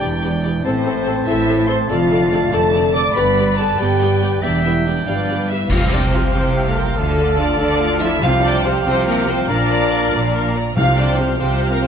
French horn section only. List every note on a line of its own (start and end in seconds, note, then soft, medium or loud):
0.00 0.24 G4 medium
0.63 1.23 C4 loud
1.26 1.68 E4 medium
1.69 1.78 C5 loud
1.92 2.52 F4 loud
2.53 2.94 A4 loud
2.95 3.16 D5 loud
3.15 3.57 B4 loud
3.57 3.78 A4 loud
3.79 4.42 G4 loud
4.43 4.64 D4 medium
4.64 4.85 E4 medium
4.87 5.06 D4 medium
5.07 5.72 B3 medium
5.07 5.47 D4 medium
5.50 5.71 E4 medium
5.71 5.81 F4 medium
5.93 6.02 D4 medium
6.12 6.33 C4 medium
6.34 6.48 C4 medium
6.66 6.76 A3 medium
6.76 6.97 A#3 medium
6.97 7.39 A3 medium
7.39 7.58 D4 medium
7.60 8.01 D4 loud
8.00 8.22 E4 loud
8.21 8.43 F4 loud
8.40 8.63 D4 loud
8.64 8.84 C4 loud
8.85 8.95 C4 loud
9.06 9.27 A#3 loud
9.28 9.50 C4 loud
9.49 10.54 D4 loud
10.78 10.97 F4 loud
10.97 11.18 D4 medium
11.19 11.37 C4 medium
11.38 11.70 C4 medium
11.70 11.75 A#3 medium
11.82 11.87 C4 medium